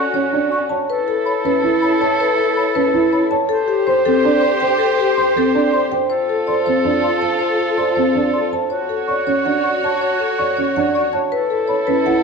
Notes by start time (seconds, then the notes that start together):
Already playing: C#4 F#4 D5
0.14 C#4 C#5
0.33 D4
0.51 D5 C#6
0.69 C#5 A5
0.88 E4 A4 B4
1.08 A4
1.26 C#5 B5
1.45 C#4 B4
1.64 E4
1.82 C#5 B5
2.01 C#5 A5
2.20 B4
2.38 A4
2.56 C#5 B5
2.75 C#4 B4
2.94 E4
3.12 C#5 B5
3.31 C#5 A5
3.49 G4 A4 C5
3.68 G4
3.87 C5 C6
4.05 C4 A4
4.25 D4
4.41 C5 C6
4.60 C5 G5
4.78 A4
4.99 G4
5.17 C5 C6
5.36 C4 A4
5.55 D4
5.73 C5 C6
5.92 C5 G5
6.09 F4 A4 C5
6.29 A4
6.47 C5 D5 C6
6.66 C4 C5
6.85 D4
7.02 D5 C6
7.22 C5 A5
7.39 C5
7.59 A4
7.78 C5 D5 C6
7.95 C4 C5
8.15 D4
8.33 D5 C6
8.53 C5 A5
8.70 F#4 C#5
8.89 A4
9.08 C#5 D5 C#6
9.27 C#4 C#5
9.45 D4 F#5
9.64 D5 C#6
9.83 C#5 A5
10.01 C#5
10.20 A4
10.38 C#5 D5 C#6
10.57 C#4 C#5
10.76 D4 F#5
10.94 D5 C#6
11.13 C#5 A5
11.32 E4 A4 B4
11.50 A4
11.68 C#5 B5
11.87 C#4 B4
12.06 E4 F#5